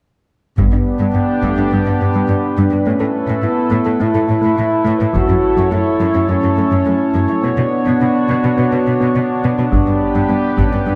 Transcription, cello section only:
0.58 0.64 G2 medium
0.72 0.78 G2 soft
1.00 1.06 G2 soft
1.14 1.20 G2 soft
1.43 1.49 G2 medium
1.57 1.63 G2 soft
1.72 1.78 G2 soft
1.86 1.92 G2 soft
2.01 2.06 G2 soft
2.14 2.20 G2 medium
2.29 2.35 G2 soft
2.57 2.63 G2 medium
2.72 2.78 G2 soft
2.86 2.92 A2 medium
3.00 3.06 A2 soft
3.29 3.35 A2 medium
3.43 3.49 A2 soft
3.72 3.78 A2 medium
3.86 3.92 A2 soft
4.01 4.06 A2 medium
4.15 4.21 A2 soft
4.30 4.35 A2 soft
4.44 4.50 A2 medium
4.59 4.64 A2 soft
4.87 4.92 A2 medium
5.01 5.07 A2 soft
5.15 5.21 F#2 medium
5.29 5.35 F#2 soft
5.58 5.64 F#2 medium
5.72 5.78 F#2 soft
6.01 6.07 F#2 medium
6.15 6.21 F#2 soft
6.29 6.35 F#2 medium
6.43 6.49 F#2 soft
6.57 6.63 F#2 soft
6.72 6.78 F#2 medium
6.86 6.92 F#2 soft
7.14 7.20 F#2 medium
7.29 7.35 F#2 soft
7.44 7.49 B2 medium
7.57 7.63 B2 soft
7.87 7.92 B2 medium
8.01 8.07 B2 soft
8.30 8.35 B2 medium
8.44 8.50 B2 soft
8.58 8.64 B2 soft
8.73 8.79 B2 soft
8.87 8.93 B2 soft
9.02 9.07 B2 soft
9.16 9.22 B2 soft
9.44 9.50 B2 soft
9.59 9.64 B2 soft
9.73 9.79 G2 soft
9.87 9.93 G2 soft
10.15 10.21 G2 soft
10.29 10.35 G2 soft
10.58 10.64 G2 medium
10.73 10.79 G2 soft
10.87 10.93 G2 soft

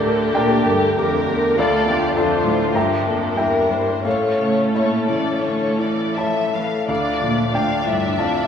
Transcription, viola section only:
0.00 1.59 D3 soft
0.00 1.55 G4 soft
1.59 2.17 F3 soft
1.59 2.16 F4 soft
2.18 3.35 F3 soft
2.18 2.75 D4 soft
2.76 4.03 D4 soft
3.38 4.05 G3 soft
4.06 6.64 A3 soft
4.06 6.68 C#4 soft
6.89 8.15 F3 soft
6.89 7.52 D4 soft
7.54 8.47 D4 soft
8.18 8.47 F3 soft

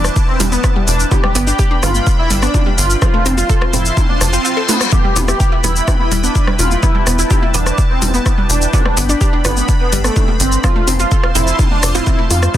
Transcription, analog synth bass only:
0.00 0.10 E1 medium
0.40 0.58 E1 medium
0.88 1.05 E1 loud
1.35 1.53 G1 loud
1.83 2.01 G1 medium
2.31 2.48 G1 medium
2.78 2.96 G1 loud
3.26 3.43 F1 loud
3.73 3.91 F1 medium
4.21 4.39 F1 loud
5.16 5.34 E1 loud
5.64 5.81 E1 medium
6.11 6.29 E1 medium
6.59 6.77 E1 loud
7.07 7.24 E1 loud
7.54 7.72 E1 medium
8.02 8.20 E1 medium
8.50 8.67 E1 loud
8.97 9.15 G1 loud
9.45 9.62 G1 medium
9.92 10.10 G1 medium
10.40 10.58 G1 loud
10.88 11.05 F1 loud
11.35 11.53 F1 medium
11.83 12.01 F1 medium
12.31 12.48 F2 medium

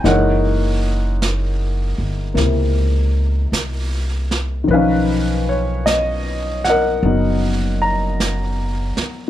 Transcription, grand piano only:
0.04 4.69 E3 soft
0.04 4.69 G#3 soft
0.04 2.33 A#3 soft
0.04 4.70 D#4 medium
0.04 3.50 A#4 soft
0.04 3.50 C#5 soft
0.04 3.49 F#5 medium
2.34 4.69 C3 soft
2.34 4.69 A#3 soft
2.34 4.70 E4 soft
4.64 9.26 D#3 soft
4.64 9.30 F3 soft
4.71 9.30 C#4 soft
4.71 7.01 D#4 soft
4.71 5.52 B4 medium
4.71 7.01 F5 soft
5.49 5.87 C#5 medium
5.86 6.68 D#5 medium
6.65 7.85 F#5 medium
6.69 8.96 A#4 medium
6.69 8.96 D#5 soft
7.02 9.30 F#3 soft
7.02 9.30 B3 soft
7.02 9.30 D#4 soft
7.82 8.16 A#5 medium

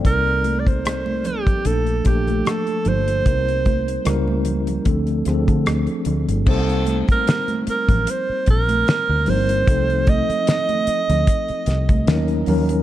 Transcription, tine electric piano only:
0.00 1.27 G3 medium
0.00 0.25 A4 soft
0.00 0.24 D5 medium
0.04 1.27 A#3 medium
0.04 1.27 C4 medium
0.04 1.28 D#4 medium
0.04 1.28 A#4 medium
1.65 1.96 F3 medium
1.65 1.97 A3 medium
1.65 1.97 A#3 medium
1.65 1.97 D4 medium
1.65 1.98 A4 medium
2.04 2.97 F3 medium
2.04 2.98 A3 medium
2.04 2.98 A#3 medium
2.04 2.98 D4 medium
2.04 2.99 A4 medium
3.25 4.03 G3 medium
3.25 4.04 A#3 medium
3.25 4.07 C4 medium
3.25 4.07 D#4 medium
3.25 4.05 A#4 medium
4.05 4.71 G3 medium
4.05 4.71 A#3 medium
4.05 4.72 C#4 medium
4.05 4.72 E4 medium
4.05 4.72 A#4 medium
4.85 5.17 F3 medium
4.85 5.18 A3 medium
4.85 5.18 C4 medium
4.85 5.18 D4 medium
4.85 5.18 A4 medium
5.26 6.19 F3 medium
5.26 6.19 A3 medium
5.26 6.20 C4 medium
5.26 6.20 D4 medium
5.26 5.35 G#4 medium
5.34 6.23 A4 medium
6.46 7.69 G3 medium
6.46 7.69 A#3 medium
6.46 7.70 C4 medium
6.46 7.70 D#4 medium
6.46 7.70 C5 medium
9.26 9.58 G3 medium
9.26 9.59 A#3 medium
9.26 9.59 C4 medium
9.26 9.59 D#4 medium
9.26 9.59 A#4 medium
9.66 10.89 F3 medium
9.66 10.89 A3 medium
9.66 10.90 C4 medium
9.66 10.90 D#4 medium
9.66 10.90 A4 medium
12.07 12.40 F#3 medium
12.07 12.40 A#3 medium
12.07 12.41 C#4 medium
12.07 12.41 D#4 medium
12.07 12.41 A#4 loud
12.47 12.79 F#3 medium
12.47 12.79 A#3 medium
12.47 12.79 C#4 medium
12.47 12.79 D#4 medium
12.47 12.80 A#4 medium

